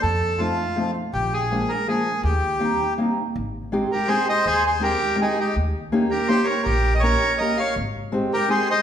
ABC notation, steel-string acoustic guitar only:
X:1
M:3/4
L:1/8
Q:1/4=163
K:Eb
V:1 name="Steel-string acoustic guitar"
z2 [F,=A,CE] z [F,A,CE] z | z2 [F,A,B,D] z [F,A,B,D] z | z2 [G,B,CE] z [G,B,CE] z | [K:Ab] z2 [A,CEG] z [A,CEG] z |
z2 [A,CEG] z [A,CEG] z | z2 [B,DEG] z [B,DEG] z | z2 [B,DEG] z [B,DEG] z | z2 [A,CEG] z [A,CEG] z |]